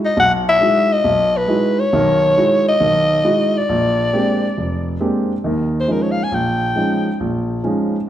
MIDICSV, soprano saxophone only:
0, 0, Header, 1, 2, 480
1, 0, Start_track
1, 0, Tempo, 439560
1, 182, Time_signature, 4, 2, 24, 8
1, 8836, End_track
2, 0, Start_track
2, 0, Title_t, "Soprano saxophone"
2, 0, Program_c, 0, 64
2, 59, Note_on_c, 0, 75, 85
2, 190, Note_off_c, 0, 75, 0
2, 214, Note_on_c, 0, 78, 101
2, 352, Note_off_c, 0, 78, 0
2, 533, Note_on_c, 0, 76, 96
2, 1011, Note_on_c, 0, 75, 100
2, 1027, Note_off_c, 0, 76, 0
2, 1495, Note_on_c, 0, 71, 83
2, 1511, Note_off_c, 0, 75, 0
2, 1963, Note_on_c, 0, 73, 101
2, 1979, Note_off_c, 0, 71, 0
2, 2914, Note_off_c, 0, 73, 0
2, 2931, Note_on_c, 0, 75, 103
2, 3907, Note_on_c, 0, 74, 89
2, 3923, Note_off_c, 0, 75, 0
2, 5484, Note_off_c, 0, 74, 0
2, 6336, Note_on_c, 0, 72, 75
2, 6460, Note_on_c, 0, 70, 68
2, 6477, Note_off_c, 0, 72, 0
2, 6578, Note_on_c, 0, 73, 61
2, 6595, Note_off_c, 0, 70, 0
2, 6677, Note_on_c, 0, 77, 85
2, 6693, Note_off_c, 0, 73, 0
2, 6809, Note_on_c, 0, 80, 83
2, 6825, Note_off_c, 0, 77, 0
2, 6928, Note_on_c, 0, 79, 78
2, 6944, Note_off_c, 0, 80, 0
2, 7877, Note_off_c, 0, 79, 0
2, 8836, End_track
0, 0, End_of_file